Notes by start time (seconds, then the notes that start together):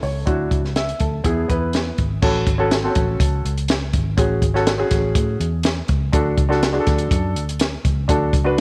0.03 C#2 C#5, open hi-hat
0.26 D2 D4 E4 F#4, kick, closed hi-hat
0.51 C#2, kick, closed hi-hat
0.65 snare
0.76 E5, snare, closed hi-hat
0.89 closed hi-hat
1.00 D2 A4, kick, closed hi-hat
1.24 E2 B3 E4 G#4, kick, closed hi-hat
1.48 E2 B3 E4 B4, kick, closed hi-hat
1.73 snare, closed hi-hat
1.98 G#1, kick, closed hi-hat
2.22 A1 C#4 F#4 A4, kick, crash
2.47 G#1, kick, closed hi-hat
2.58 C#4 F#4 A4
2.71 snare, closed hi-hat
2.83 C4 F#4 A4
2.89 C#4
2.95 A1, kick, closed hi-hat
3.20 C#2, kick, closed hi-hat
3.45 C#2, closed hi-hat
3.58 closed hi-hat
3.68 snare, closed hi-hat
3.93 G#1, kick, closed hi-hat
4.17 A1 C#4 F#4 G#4, kick, closed hi-hat
4.42 G#1, kick, closed hi-hat
4.54 C#4 F#4 A4, snare
4.67 snare, closed hi-hat
4.78 C#4 F#4 G#4
4.91 A1, kick, snare, closed hi-hat
5.15 A2, kick, closed hi-hat
5.40 E2, closed hi-hat
5.63 snare, closed hi-hat
5.88 C#2, kick, closed hi-hat
6.12 D2 D4 F#4 A4, kick, closed hi-hat
6.38 C#2, kick, closed hi-hat
6.49 D4 F#4 A4, snare
6.63 snare, closed hi-hat
6.73 D4 F#4 G#4
6.80 A4
6.87 D2, kick, snare, closed hi-hat
6.98 closed hi-hat
7.11 F#2, kick, closed hi-hat
7.35 D2, closed hi-hat
7.49 closed hi-hat
7.60 snare, closed hi-hat
7.85 C#2, kick, closed hi-hat
8.08 D2 D4 F#4 A4, kick, closed hi-hat
8.33 C#2, kick, closed hi-hat
8.44 D4 F#4 B4